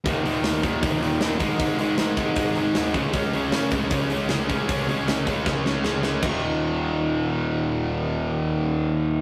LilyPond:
<<
  \new Staff \with { instrumentName = "Distorted electric guitar" } { \clef bass \time 4/4 \key des \lydian \tempo 4 = 156 <ees, bes, ees>8 <ees, bes, ees>8 <ees, bes, ees>8 <ees, bes, ees>8 <ees, bes, ees>8 <ees, bes, ees>8 <ees, bes, ees>8 <aes, ees aes>8 | <aes, ees aes>8 <aes, ees aes>8 <aes, ees aes>8 <aes, ees aes>8 <aes, ees aes>8 <aes, ees aes>8 <aes, ees aes>8 <des aes des'>8 | <des aes des'>8 <des aes des'>8 <des aes des'>8 <des aes des'>8 <des aes des'>8 <des aes des'>8 <des aes des'>8 <des aes des'>8 | <des aes des'>8 <des aes des'>8 <des aes des'>8 <des aes des'>8 <des aes des'>8 <des aes des'>8 <des aes des'>8 <des aes des'>8 |
<ees, bes, ees>1~ | <ees, bes, ees>1 | }
  \new Staff \with { instrumentName = "Distorted electric guitar" } { \clef bass \time 4/4 \key des \lydian <ees, bes, ees>8 <ees, bes, ees>8 <ees, bes, ees>8 <ees, bes, ees>8 <ees, bes, ees>8 <ees, bes, ees>8 <ees, bes, ees>8 <aes, ees aes>8 | <aes, ees aes>8 <aes, ees aes>8 <aes, ees aes>8 <aes, ees aes>8 <aes, ees aes>8 <aes, ees aes>8 <aes, ees aes>8 <des aes des'>8 | <des aes des'>8 <des aes des'>8 <des aes des'>8 <des aes des'>8 <des aes des'>8 <des aes des'>8 <des aes des'>8 <des aes des'>8 | <des aes des'>8 <des aes des'>8 <des aes des'>8 <des aes des'>8 <des aes des'>8 <des aes des'>8 <des aes des'>8 <des aes des'>8 |
<ees, bes, ees>1~ | <ees, bes, ees>1 | }
  \new Staff \with { instrumentName = "Picked electric bass" } { \clef bass \time 4/4 \key des \lydian ees,,8 ees,,8 ees,8 ees,,8 ees,,8 ees,,8 ees,,8 aes,,8 | aes,,8 aes,,8 aes,,4 aes,,8 aes,,8 ees,8 des,8 | des,8 des,8 des8 des,8 des,8 des,8 des,8 des8 | des,8 des,8 des,4 des,8 des,8 des,4 |
ees,,1~ | ees,,1 | }
  \new DrumStaff \with { instrumentName = "Drums" } \drummode { \time 4/4 <hho bd>8 hho8 <hho sn>8 <hho bd>8 <hho bd>8 hho8 <hho sn>8 <hho bd>8 | <hho bd>8 hho8 <hho sn>8 <hho bd>8 <hho bd>8 hho8 <hho sn>8 <hho bd>8 | <hho bd>8 hho8 <hho sn>8 <hho bd>8 <hho bd>8 hho8 <hho sn>8 <hho bd>8 | <hho bd>8 hho8 <hho sn>8 <hho bd>8 <bd sn>8 sn8 sn8 sn8 |
<cymc bd>4 r4 r4 r4 | r4 r4 r4 r4 | }
>>